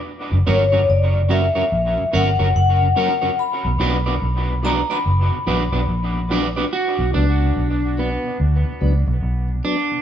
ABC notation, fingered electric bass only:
X:1
M:4/4
L:1/16
Q:"Swing 16ths" 1/4=72
K:Bm
V:1 name="Fingered electric bass" clef=bass
z F,,, G,,,2 F,,,3 z ^A,,, z G,,, F,,, F,,,2 z2 | z B,,, B,,,2 B,,,3 z F,,, z ^A,,, B,,, A,,,4 | z B,,, C,,2 B,,,3 z D,, z C,, B,,, B,,,2 z2 |]